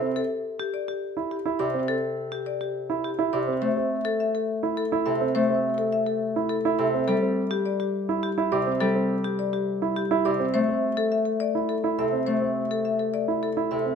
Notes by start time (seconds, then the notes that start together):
Already playing: C3
0.01 C4
0.16 A4
0.60 G4
0.74 D5
0.88 G4
1.17 E4
1.31 G4
1.46 E4
1.59 C3 G4 D5
1.74 C4
1.88 A4
2.32 G4
2.46 D5
2.61 G4
2.90 E4
3.04 G4
3.19 E4
3.33 C3 G4 D5
3.48 C4
3.61 A3 C5
3.77 C4
4.05 A4
4.20 E5
4.35 A4
4.63 E4
4.77 A4
4.92 E4
5.06 C3 A4 E5
5.21 C4
5.35 A3 C5
5.50 C4
5.78 A4
5.92 E5
6.06 A4
6.36 E4
6.49 A4
6.65 E4
6.79 C3 A4 E5
6.94 C4
7.08 G3 A4
7.22 C4
7.51 G4
7.65 D5
7.80 G4
8.09 E4
8.23 G4
8.38 E4
8.52 C3 G4 D5
8.67 C4
8.81 G3 A4
8.95 C4
9.24 G4
9.39 D5
9.53 G4
9.82 E4
9.96 G4
10.11 E4
10.25 C3 G4 D5
10.40 C4
10.54 A3 C5
10.69 C4
10.97 A4
11.12 E5
11.25 A4
11.40 D5
11.55 E4
11.69 A4
11.84 E4
11.98 C3 A4 E5
12.13 C4
12.26 A3 C5
12.42 C4
12.71 A4
12.85 E5
12.99 A4
13.14 D5
13.28 E4
13.43 A4
13.57 E4
13.71 C3 A4 E5
13.86 C4